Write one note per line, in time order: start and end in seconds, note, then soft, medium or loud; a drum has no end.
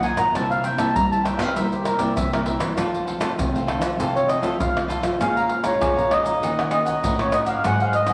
0.00 0.13 A#2 loud
0.00 0.32 D#3 medium
0.00 0.31 F#3 medium
0.00 0.31 A#3 medium
0.00 0.32 D#4 medium
0.00 0.18 F4 medium
0.00 0.18 A#4 medium
0.00 0.19 G#5 medium
0.00 pandeiro medium
0.04 0.17 D#5 medium
0.04 0.16 F#5 medium
0.17 0.31 A#2 medium
0.17 0.34 A#4 soft
0.17 0.33 D#5 soft
0.17 0.33 F#5 medium
0.17 0.34 A#5 medium
0.17 pandeiro medium
0.17 tamborim medium
0.17 maracas medium
0.17 surdo soft
0.34 0.74 C3 loud
0.34 0.93 C3 medium
0.34 0.76 G3 medium
0.34 0.76 A#3 medium
0.34 0.63 E4 medium
0.34 0.76 E4 medium
0.34 0.63 A#4 medium
0.34 0.64 C5 medium
0.34 0.65 E5 medium
0.34 0.50 A5 medium
0.34 pandeiro medium
0.34 tamborim medium
0.34 maracas medium
0.34 surdo medium
0.51 0.66 F5 medium
0.51 pandeiro soft
0.51 maracas soft
0.51 surdo soft
0.64 0.77 E4 medium
0.64 0.77 A#4 medium
0.64 0.77 C5 medium
0.64 0.78 E5 medium
0.64 0.80 G5 medium
0.64 pandeiro medium
0.64 maracas medium
0.78 0.92 C3 medium
0.78 1.05 G3 medium
0.78 1.05 A#3 medium
0.78 0.88 E4 medium
0.78 1.05 E4 medium
0.78 0.89 A#4 medium
0.78 0.89 C5 medium
0.78 0.89 E5 medium
0.78 0.95 A5 medium
0.78 pandeiro medium
0.78 tamborim medium
0.78 maracas medium
0.95 1.54 G2 medium
0.95 1.41 G3 medium
0.95 1.10 A#5 loud
0.95 pandeiro medium
0.95 maracas medium
0.95 surdo loud
1.12 1.52 G3 medium
1.12 1.53 A#3 medium
1.12 1.53 E4 medium
1.12 1.24 A#4 soft
1.12 1.25 C5 soft
1.12 1.25 E5 medium
1.12 1.26 A5 medium
1.12 pandeiro soft
1.12 maracas soft
1.24 1.40 E4 medium
1.24 1.39 A#4 medium
1.24 1.38 C5 medium
1.24 1.37 E5 medium
1.24 1.40 G5 medium
1.24 pandeiro medium
1.24 tamborim medium
1.24 maracas medium
1.24 surdo soft
1.38 1.52 C3 loud
1.38 1.55 A#4 soft
1.38 1.55 C5 soft
1.38 1.54 E5 medium
1.38 1.54 F5 medium
1.38 pandeiro medium
1.38 tamborim medium
1.38 maracas medium
1.55 2.14 C3 medium
1.55 1.95 G3 loud
1.55 1.85 G3 medium
1.55 1.85 A#3 medium
1.55 1.70 E4 medium
1.55 1.86 E4 medium
1.55 1.71 A#4 medium
1.55 1.71 C5 medium
1.55 1.71 E5 medium
1.55 pandeiro medium
1.55 maracas medium
1.55 surdo medium
1.71 1.86 G4 medium
1.71 1.85 A#4 soft
1.71 1.85 C5 soft
1.71 1.86 E5 soft
1.71 pandeiro soft
1.71 maracas soft
1.84 1.97 E4 medium
1.84 2.00 A#4 medium
1.84 1.98 A#4 soft
1.84 1.98 C5 medium
1.84 1.98 E5 medium
1.84 pandeiro medium
1.84 tamborim medium
1.84 maracas medium
1.98 2.13 C3 loud
1.98 2.27 G3 medium
1.98 2.27 A#3 medium
1.98 2.10 E4 medium
1.98 2.27 E4 medium
1.98 2.10 A#4 medium
1.98 2.10 C5 medium
1.98 2.15 D5 medium
1.98 2.10 E5 medium
1.98 pandeiro medium
1.98 maracas medium
1.98 surdo soft
2.16 2.75 G2 medium
2.16 2.55 C3 medium
2.16 2.32 E5 medium
2.16 pandeiro medium
2.16 maracas medium
2.16 surdo loud
2.32 2.74 G3 medium
2.32 2.74 A#3 medium
2.32 2.74 E4 medium
2.32 2.41 A#4 medium
2.32 pandeiro soft
2.32 tamborim medium
2.32 maracas soft
2.45 2.61 E4 medium
2.45 2.60 A#4 medium
2.45 2.59 C5 medium
2.45 2.58 E5 medium
2.45 pandeiro medium
2.59 2.74 E3 medium
2.59 2.76 A#4 soft
2.59 2.76 C5 soft
2.59 2.75 E5 medium
2.59 pandeiro medium
2.59 tamborim medium
2.59 maracas medium
2.59 surdo soft
2.77 3.16 F3 medium
2.77 3.36 F3 medium
2.77 3.07 A3 medium
2.77 3.07 C4 medium
2.77 3.05 F4 medium
2.77 3.07 F4 medium
2.77 3.06 A4 medium
2.77 3.06 C5 medium
2.77 3.07 F5 medium
2.77 pandeiro medium
2.77 tamborim medium
2.77 maracas medium
2.77 surdo medium
2.94 pandeiro soft
2.94 maracas soft
2.94 surdo soft
3.06 3.19 F4 medium
3.06 3.20 A4 medium
3.06 3.20 C5 medium
3.06 3.20 F5 medium
3.06 pandeiro medium
3.20 3.35 F3 medium
3.20 3.48 A3 medium
3.20 3.48 C4 medium
3.20 3.31 F4 medium
3.20 3.48 F4 medium
3.20 3.31 A4 medium
3.20 3.31 C5 medium
3.20 3.32 F5 medium
3.20 pandeiro medium
3.20 tamborim medium
3.20 maracas medium
3.38 3.81 C3 medium
3.38 3.97 C3 medium
3.38 pandeiro medium
3.38 maracas medium
3.38 surdo loud
3.54 3.95 A3 medium
3.54 3.96 C4 medium
3.54 3.96 F4 medium
3.54 3.67 A4 soft
3.54 3.67 C5 soft
3.54 3.68 F5 medium
3.54 pandeiro soft
3.54 maracas soft
3.67 3.82 F4 medium
3.67 3.82 A4 medium
3.67 3.81 C5 medium
3.67 3.81 F5 medium
3.67 pandeiro medium
3.67 tamborim medium
3.67 surdo soft
3.81 3.96 F3 loud
3.81 3.98 A4 soft
3.81 3.98 C5 medium
3.81 3.97 F5 medium
3.81 pandeiro medium
3.81 tamborim medium
3.81 maracas loud
3.99 4.38 C3 medium
3.99 4.57 F3 medium
3.99 4.28 A3 medium
3.99 4.29 C4 medium
3.99 4.14 F4 medium
3.99 4.29 F4 medium
3.99 4.14 A4 medium
3.99 4.14 C5 medium
3.99 4.14 F5 medium
3.99 pandeiro medium
3.99 maracas medium
3.99 surdo medium
4.15 4.27 A4 soft
4.15 4.28 C5 soft
4.15 4.30 C#5 medium
4.15 4.28 F5 medium
4.15 pandeiro soft
4.15 maracas soft
4.28 4.41 F4 medium
4.28 4.41 A4 medium
4.28 4.41 C5 medium
4.28 4.44 D#5 medium
4.28 4.42 F5 medium
4.28 pandeiro medium
4.28 tamborim medium
4.28 maracas medium
4.42 4.56 F3 medium
4.42 4.70 A3 medium
4.42 4.70 C4 medium
4.42 4.53 F4 medium
4.42 4.70 F4 medium
4.42 4.53 A4 medium
4.42 4.53 C5 medium
4.42 4.59 E5 medium
4.42 4.53 F5 medium
4.42 pandeiro medium
4.42 maracas medium
4.42 surdo soft
4.60 5.18 C3 medium
4.60 4.99 F3 loud
4.60 4.79 F5 medium
4.60 pandeiro medium
4.60 maracas medium
4.60 surdo loud
4.76 5.17 A3 medium
4.76 5.17 C4 medium
4.76 5.17 F4 medium
4.76 pandeiro soft
4.76 tamborim medium
4.76 maracas soft
4.76 surdo soft
4.88 5.04 F4 medium
4.88 5.03 A4 medium
4.88 5.02 C5 medium
4.88 5.01 F5 medium
4.88 pandeiro medium
4.88 maracas medium
5.02 5.17 F3 loud
5.02 5.19 A4 soft
5.02 5.19 C5 soft
5.02 5.18 F5 medium
5.02 pandeiro medium
5.02 tamborim medium
5.02 maracas medium
5.02 surdo soft
5.20 5.72 A#2 medium
5.20 5.79 A#2 medium
5.20 5.62 G#3 medium
5.20 5.62 C#4 medium
5.20 5.62 F4 medium
5.20 5.35 G#4 medium
5.20 5.35 C#5 medium
5.20 5.68 F5 loud
5.20 5.36 F5 medium
5.20 5.35 A#5 medium
5.20 pandeiro medium
5.20 tamborim medium
5.20 maracas medium
5.20 surdo medium
5.37 5.49 C#5 medium
5.37 5.49 F5 medium
5.37 5.49 A#5 medium
5.37 pandeiro soft
5.37 maracas soft
5.49 muted cavaquinho stroke soft
5.49 pandeiro medium
5.63 6.06 G#3 medium
5.63 6.06 C#4 medium
5.63 6.06 F4 medium
5.63 5.80 C#5 medium
5.63 6.13 C#5 medium
5.63 5.80 F5 medium
5.63 5.79 A#5 medium
5.63 pandeiro medium
5.63 tamborim medium
5.63 maracas medium
5.63 surdo soft
5.81 6.39 F2 medium
5.81 5.94 F3 medium
5.81 5.95 G#4 soft
5.81 5.96 C#5 medium
5.81 5.96 F5 medium
5.81 5.95 A#5 medium
5.81 pandeiro medium
5.81 tamborim medium
5.81 high agogo medium
5.81 maracas medium
5.81 surdo loud
5.96 6.36 A#2 medium
5.96 6.24 C#5 medium
5.96 6.23 F5 medium
5.96 6.23 A#5 medium
5.96 pandeiro soft
5.96 maracas soft
6.10 6.29 G#3 medium
6.10 6.29 C#4 medium
6.10 6.30 F4 medium
6.10 6.69 D#5 loud
6.10 pandeiro medium
6.10 tamborim medium
6.10 high agogo medium
6.24 6.40 C#5 medium
6.24 6.40 F5 medium
6.24 6.40 A#5 medium
6.24 pandeiro medium
6.24 maracas medium
6.24 surdo soft
6.42 7.00 D#3 medium
6.42 6.94 D#3 medium
6.42 6.60 A#3 medium
6.42 6.60 C#4 medium
6.42 6.56 D#4 soft
6.42 6.61 F#4 medium
6.42 6.57 A#4 medium
6.42 6.57 C#5 medium
6.42 6.57 F#5 medium
6.42 pandeiro medium
6.42 low agogo medium
6.42 maracas medium
6.42 surdo medium
6.59 6.71 A#4 medium
6.59 6.71 C#5 medium
6.59 6.71 F#5 medium
6.59 pandeiro soft
6.59 tamborim medium
6.59 maracas soft
6.70 7.13 A#3 medium
6.70 7.13 C#4 medium
6.70 7.13 F#4 medium
6.70 7.20 D#5 medium
6.70 muted cavaquinho stroke soft
6.70 pandeiro medium
6.70 tamborim medium
6.70 low agogo medium
6.70 maracas medium
6.85 7.02 A#4 medium
6.85 7.01 C#5 medium
6.85 7.01 F#5 medium
6.85 pandeiro medium
6.85 maracas medium
6.85 surdo soft
7.03 7.55 A2 loud
7.03 7.31 D#4 medium
7.03 7.32 A#4 medium
7.03 7.32 C#5 medium
7.03 7.33 F#5 medium
7.03 pandeiro medium
7.03 maracas medium
7.03 surdo loud
7.19 7.59 C#4 medium
7.19 7.60 F#4 medium
7.19 7.35 C#5 medium
7.19 pandeiro soft
7.19 tamborim medium
7.19 maracas soft
7.32 7.47 D#4 medium
7.32 7.47 A#4 soft
7.32 7.46 C#5 medium
7.32 7.40 D#5 medium
7.32 7.45 F#5 medium
7.32 pandeiro medium
7.32 tamborim medium
7.32 maracas medium
7.46 7.63 A#4 medium
7.46 7.62 C#5 medium
7.46 7.63 F5 medium
7.46 7.62 F#5 medium
7.46 pandeiro medium
7.46 high agogo medium
7.46 maracas medium
7.46 surdo soft
7.63 8.13 G#2 medium
7.63 8.04 F#3 medium
7.63 8.05 C4 medium
7.63 8.05 D#4 medium
7.63 7.78 D#4 soft
7.63 7.79 G#4 medium
7.63 7.79 C5 medium
7.63 7.79 F#5 loud
7.63 7.79 F#5 medium
7.63 pandeiro medium
7.63 tamborim medium
7.63 maracas medium
7.63 surdo medium
7.80 7.93 G#4 medium
7.80 7.94 C5 medium
7.80 7.95 F5 medium
7.80 7.94 F#5 medium
7.80 pandeiro soft
7.80 maracas soft
7.93 8.13 D#5 loud
7.93 muted cavaquinho stroke soft
7.93 pandeiro medium
7.93 maracas medium
8.06 8.13 F#3 medium
8.06 8.13 C4 medium
8.06 8.13 D#4 medium
8.06 8.13 G#4 medium
8.06 8.13 C5 medium
8.06 8.13 F#5 medium
8.06 pandeiro medium
8.06 tamborim medium
8.06 maracas medium
8.06 surdo soft